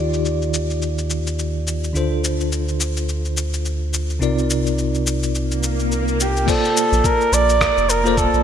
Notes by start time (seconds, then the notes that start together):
Already playing: D#2 D#3 D#4 F4 G4 D5
0.14 cabasa
0.25 cabasa
0.42 cabasa
0.54 cabasa
0.70 cabasa
0.82 cabasa
0.98 cabasa
1.10 cabasa
1.27 cabasa
1.39 cabasa
1.67 cabasa
1.84 cabasa
1.93 D2 D3 D4 F4 A4 C5, cabasa
2.24 cabasa
2.40 cabasa
2.52 cabasa
2.68 cabasa
2.80 cabasa
2.97 cabasa
3.09 cabasa
3.25 cabasa
3.37 cabasa
3.53 cabasa
3.65 cabasa
3.94 cabasa
4.10 cabasa
4.19 C2 C3 C4 D#4 F4 A#4 D5, cabasa
4.38 cabasa
4.50 cabasa
4.67 cabasa
4.78 cabasa
4.95 cabasa
5.07 cabasa
5.23 cabasa
5.35 swell, cabasa
5.51 cabasa
5.63 cabasa
5.79 cabasa
5.92 cabasa
6.08 cabasa
6.20 G4, cabasa
6.37 cabasa
6.46 A#3 F4 A4 C5 D5, kick, crash, cabasa
6.65 cabasa
6.77 cabasa
6.92 A#1, cabasa
7.04 A#4, kick, cabasa
7.21 cabasa
7.32 A#1 D5, cabasa
7.49 cabasa
7.61 kick, cross-stick, cabasa
7.77 F1, cabasa
7.89 A#4, cabasa
8.04 A#3 F4 A4 C5 D5, cabasa
8.17 A4, kick, cabasa
8.34 A#1, cabasa